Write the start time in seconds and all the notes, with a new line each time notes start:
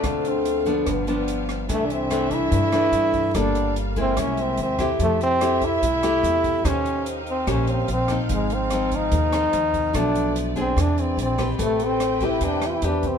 Already playing: A3 C4 D4 F4
0.04 D2 D3 D4 C5 F5, kick, cross-stick, closed hi-hat
0.25 C4, closed hi-hat
0.45 closed hi-hat
0.66 F3 B3 D4, closed hi-hat
0.70 B3
0.86 G1 G2 B3 G4 F5, kick, cross-stick, closed hi-hat
1.07 F3 B3 D4, closed hi-hat
1.28 closed hi-hat
1.49 cross-stick, closed hi-hat
1.69 C2 C3 E3 A3 D4 A4 E5, kick, closed hi-hat
1.73 A3
1.86 D4
1.90 C4, closed hi-hat
2.10 E3 A3 D4, cross-stick, closed hi-hat
2.31 E4, kick, closed hi-hat
2.51 G2, kick, closed hi-hat
2.72 E3 A3 D4, cross-stick, closed hi-hat
2.92 G2, closed hi-hat
3.14 kick, closed hi-hat
3.34 G1 G3 A#3 F4 A4 F5, kick, cross-stick, closed hi-hat
3.38 D4
3.55 closed hi-hat
3.76 closed hi-hat
3.96 G#3 A#3 E4, kick, closed hi-hat
4.01 C4
4.17 C2 C3 C#4 G#4 E5, kick, cross-stick, closed hi-hat
4.37 C4, closed hi-hat
4.57 D#2, closed hi-hat
4.63 C4
4.79 A3 E4 G4, kick, cross-stick, closed hi-hat
4.99 F2 F3 A3 G4 E5, kick, closed hi-hat
5.21 C4, closed hi-hat
5.41 A3 E4 G4, cross-stick, closed hi-hat
5.62 E4, kick, closed hi-hat
5.82 C2 C3, kick, closed hi-hat
6.03 A3 E4 G4, cross-stick, closed hi-hat
6.23 E2, closed hi-hat
6.44 kick, closed hi-hat
6.64 D#2 D#3 C#4 D#4 G4 C5 F5, kick, cross-stick, closed hi-hat
6.86 closed hi-hat
7.06 closed hi-hat
7.27 C4, closed hi-hat
7.47 A#1 A#2 C#4 G4 C5, kick, cross-stick, closed hi-hat
7.67 C4, closed hi-hat
7.88 A#1, closed hi-hat
7.92 C4
8.08 F3 C4 D#4, kick, cross-stick, closed hi-hat
8.29 G#1 G#2 C4 G#4, kick, closed hi-hat
8.34 G#3
8.50 C4, closed hi-hat
8.70 F3 C4 D#4, cross-stick, closed hi-hat
8.91 kick, closed hi-hat
8.96 D#4
9.12 D#2 D#3, kick, closed hi-hat
9.33 F3 C4 D#4, cross-stick, closed hi-hat
9.53 D#2, closed hi-hat
9.74 kick, closed hi-hat
9.93 B1 B2 F3 A3 B3 D4 A4 D5, kick, cross-stick, closed hi-hat
9.98 D4
10.15 closed hi-hat
10.36 closed hi-hat
10.56 C4 D4 G#4, kick, closed hi-hat
10.60 C4
10.77 E2 E3 C4 G#4 D5, kick, cross-stick, closed hi-hat
10.81 D4
10.98 C4, closed hi-hat
11.17 A#1, closed hi-hat
11.22 C4
11.38 C4 G4 B4, kick, cross-stick, closed hi-hat
11.59 A1 A3 B4 G5, kick, closed hi-hat
11.63 A3
11.80 closed hi-hat
11.84 C4
12.00 cross-stick, closed hi-hat
12.20 C4 G4 B4, kick, closed hi-hat
12.25 E4
12.41 E2 E3, kick, closed hi-hat
12.45 D4
12.62 cross-stick, closed hi-hat
12.66 E4
12.70 F4
12.75 E4
12.82 E2 C4 D4 G4 B4, closed hi-hat
13.03 kick, closed hi-hat
13.07 C4